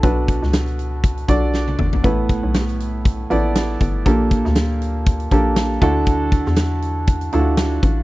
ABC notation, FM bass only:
X:1
M:4/4
L:1/16
Q:"Swing 16ths" 1/4=119
K:D
V:1 name="FM bass" clef=bass
B,,,3 C,,6- C,, B,,,4 G,,,2 | A,,,3 B,,,6- B,,, A,,,4 G,,,2 | _B,,,3 D,,6- D,, B,,,4 D,,2- | D,,3 E,,6- E,, D,,4 A,,,2 |]